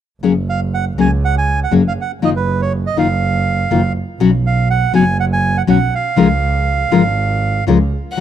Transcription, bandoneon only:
0.49 F5
0.74 F#5
1.00 G#5
1.25 F#5
1.38 G#5
1.64 F#5
1.88 F5
2.01 F#5
2.25 D#5
2.36 B4
2.62 C#5
2.87 D#5
2.99 F5
4.46 F5
4.70 F#5
4.95 G#5
5.20 F#5
5.33 G#5
5.57 F#5
5.70 F#5
5.95 F5

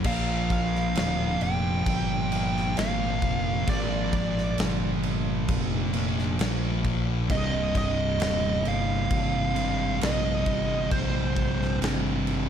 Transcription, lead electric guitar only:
0.06 F5
0.52 F5
1.43 G5
2.78 F5
3.69 D5
7.31 D#5
7.77 D#5
8.68 F5
10.03 D#5
10.92 C5

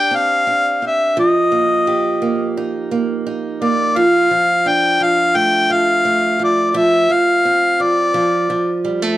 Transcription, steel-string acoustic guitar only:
Already playing: D4 G4
0.11 C4
0.47 D4
0.82 C4
1.17 F3
1.52 A#3
1.87 G4
2.22 A#3
2.57 D#4
2.91 A#3
3.27 D#4
3.62 A#3
3.96 F3
4.31 F3
4.66 D4
5.00 F3
5.35 A3
5.70 F3
6.05 A3
6.39 F3
6.74 F3
7.10 F3
7.45 C4
7.80 F3
8.14 F3
8.50 F3
8.85 G3
9.02 A3

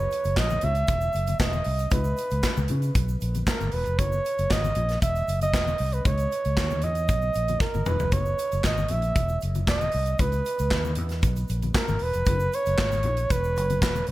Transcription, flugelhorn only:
Already playing: C#5
0.38 D#5
0.64 E5
1.41 D#5
1.93 B4
3.48 A#4
3.73 B4
3.99 C#5
4.52 D#5
5.02 E5
5.43 D#5
5.94 B4
6.06 C#5
6.84 D#5
7.61 A#4
7.87 B4
8.13 C#5
8.65 D#5
8.91 E5
9.69 D#5
10.20 B4
11.76 A#4
12.03 B4
12.55 C#5
13.31 B4
13.83 B4

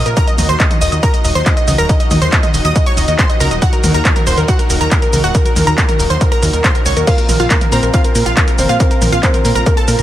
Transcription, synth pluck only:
0.06 A#4
0.17 A#4 A#5
0.27 D#5
0.38 D#5
0.49 C5 C6
0.60 D#5
0.70 D#5
0.81 D#5 D#6
0.92 D#5
1.03 A#4 A#5
1.14 D#5
1.25 D#5
1.35 C5 C6
1.46 D#5
1.57 D#5
1.68 D#5
1.78 A#4 A#5
1.89 D#5
2.00 D#5
2.11 D#5
2.22 C5 C6
2.33 D#5
2.43 D#5
2.54 D#5
2.65 D#5 D#6
2.76 D#5
2.86 C#5 C#6
2.97 D#5
3.08 D#5
3.19 C5 C6
3.30 D#5
3.40 A#4 A#5
3.51 D#5
3.62 F#4 F#5
3.73 A#4
3.84 A#4
3.94 A#4 A#5
4.05 A#4
4.16 A#4
4.27 C5 C6
4.38 A#4
4.48 F#4 F#5
4.59 A#4
4.70 A#4
4.81 A#4 A#5
4.92 A#4
5.02 A#4
5.13 A#4
5.24 F#4 F#5
5.35 A#4
5.46 A#4
5.56 A#4
5.67 A#4 A#5
5.78 A#4
5.89 A#4
5.99 A#4
6.10 C5 C6
6.21 A#4
6.32 A#4 A#5
6.42 A#4
6.53 A#4
6.64 C5 C6
6.75 A#4
6.86 C#5 C#6
6.97 A#4
7.07 F4 F5
7.18 A#4
7.29 A#4
7.40 F4 F5
7.51 A#4
7.61 A#4
7.72 A#4 A#5
7.83 A#4
7.94 F4 F5
8.05 A#4
8.15 A#4
8.26 F4 F5
8.37 A#4
8.48 A#4
8.59 A#4
8.69 F4 F5
8.80 A#4
8.91 A#4
9.02 A#4
9.12 F4 F5
9.23 A#4
9.34 A#4
9.45 A#4
9.55 A#4 A#5
9.66 A#4
9.77 A4 A5
9.88 A#4
9.99 A#4

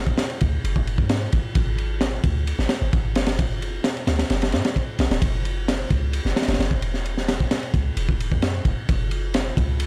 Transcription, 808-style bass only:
Already playing: F#1
0.42 D2
0.64 F#1
0.98 G#2
1.33 G#1
1.55 G#1
2.24 D2
2.59 G#1
2.82 G#1
2.93 G#1
3.16 F#1
4.07 D2
4.30 F#1
4.53 G#2
4.99 B1
5.11 D1
5.22 F#1
5.91 C#2
6.25 F#1
6.48 F#1
6.59 F#1
6.82 E1
7.74 C#2
7.97 E1
8.32 F#2
8.65 F#1
8.89 F#1
9.57 C#2

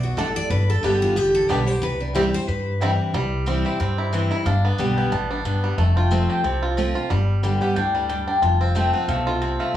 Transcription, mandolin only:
0.17 A3 F#4 D5 A5
0.83 B3 G4 D5 A5
1.49 B3 G4 D5 A5
2.14 C4 E4 C5 G5
2.80 C4 E4 C5 G5
3.79 C5
4.31 E5
4.46 F5
4.64 A4
4.79 D5
4.97 G5
5.12 A5
5.78 A5
5.96 G5
6.11 E5
6.29 G5
6.44 A5
7.61 F#5
7.76 G5
7.95 B4
8.09 D5
8.27 G5
8.42 A5
8.60 F5
8.75 G5
8.93 F#5
9.08 F5
9.26 A4
9.59 F5

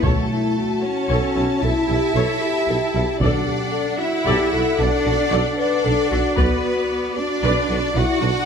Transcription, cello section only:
0.04 A3
0.82 C#4
1.62 E4
3.21 D4
3.99 E4
4.79 D4
5.58 D4
6.38 B3
7.17 D4
7.96 F#4

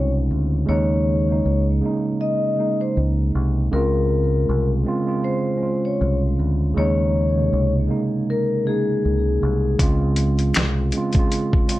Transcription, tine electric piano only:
Already playing: C#3 G#3 C4 C#4 D#4 F4
0.65 C#3 G#3 A#3
0.70 D#4
1.27 C#3 G#3 A#3
1.32 D#4
1.81 C#3 G#3 A#3
1.85 D#4
2.55 C#3 G#3 A#3
2.60 D#4
3.71 C#3 G#3 C4
3.76 F4
4.84 C#3 G#3 C4
4.89 F4
5.04 C#3 G#3 C4
5.09 F4
5.58 G#3 C#4
5.63 F4
6.74 C#3 G#3 A#3
6.80 D#4
7.34 C#3 G#3 A#3
7.39 C3
7.87 C#3 G#3 A#3
7.91 D#4
8.65 C#3 G#3 A#3
8.69 D#4
9.78 C#3 G#3 C4
9.83 F4
10.93 C#3 G#3 C4
10.97 F4
11.14 C#3 G#3 C4
11.19 F4
11.67 G#3 C4 C#4
11.72 F4

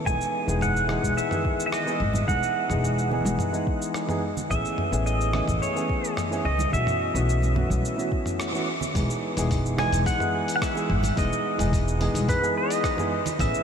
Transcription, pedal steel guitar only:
0.06 G#5
0.62 F#5
1.17 E5
1.66 E5
1.73 D#5
2.28 F#5
4.51 E5
5.06 D#5
5.62 C#5
6.45 D#5
6.73 E5
9.79 G#5
10.06 F#5
10.56 F#5
10.63 E5
11.18 D#5
12.29 B4
12.57 D#5
13.40 E5

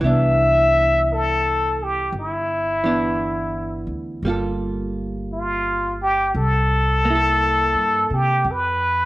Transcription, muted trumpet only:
0.05 E5
1.13 A4
1.83 G4
2.19 E4
5.33 F4
6.02 G4
6.36 A4
8.14 G4
8.51 B4

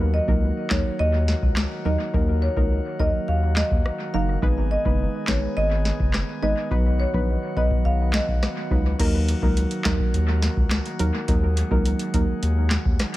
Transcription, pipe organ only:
Already playing: D#3 F#3 A#3 F#4
4.42 D#3 G#3 B3 G#4
6.71 F#3 F#4
9.00 D#3 F#3 A#3 F#4
11.28 G#3

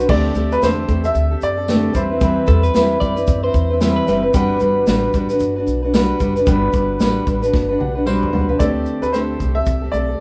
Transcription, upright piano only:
Already playing: C5
0.10 D5
0.52 B4
0.63 C5
1.05 E5
1.43 D5
1.96 C5
8.07 C5
8.59 D5
9.02 B4
9.12 C5
9.55 E5
9.92 D5

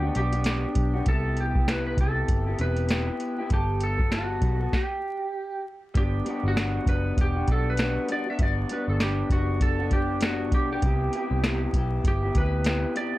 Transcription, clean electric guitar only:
0.02 B3 D4 F#4
0.15 G3 B3 D4 F#4
0.32 B3 D4 F#4
0.45 G3 B3 D4 F#4
0.66 B3 D4
0.94 B3 D4 F#4
1.07 C3 B3 E4 G4
1.55 B3 E4 G4
1.68 C3 B3 E4 G4
1.98 C3 B3 E4
2.02 G4
2.46 E4 G4
2.51 B3
2.59 C3 B3 E4 G4
2.89 C3 B3 E4 G4
3.07 B3 E4 G4
3.38 B3 E4 G4
3.50 G3 B3 A4
3.98 B3 F#4 A4
4.10 G3 B3 F#4 A4
4.41 G3 B3 F#4 A4
4.60 B3 F#4 A4
5.94 G3 B3 D4
6.25 G3 B3 D4 F#4
6.56 G3 B3 D4 F#4
6.85 G3 B3 D4
6.90 F#4
7.36 B3 D4 F#4
7.47 G3 B3 D4
7.51 F#4
7.79 G3 B3 D4 F#4
8.08 G3 B3 D4 F#4
8.26 B3 D4 F#4
8.39 G3 B3 D4 F#4
8.70 G3 B3 D4 F#4
8.99 G3 B3 D4
9.30 G3 B3 D4 F#4
9.79 B3 D4 F#4
9.90 G3 B3 D4
10.21 G3 B3 D4 F#4
10.51 G3 B3 D4 F#4
10.70 B3 D4 F#4
10.83 C3 B3 E4 G4
11.13 C3 B3 E4
11.17 G4
11.44 C3 B3 E4 G4
11.76 B3 E4 G4
12.23 B3 E4 G4
12.35 C3 B3 E4 G4
12.65 C3 B3 E4 G4
12.95 C3 B3 E4 G4
13.13 G4

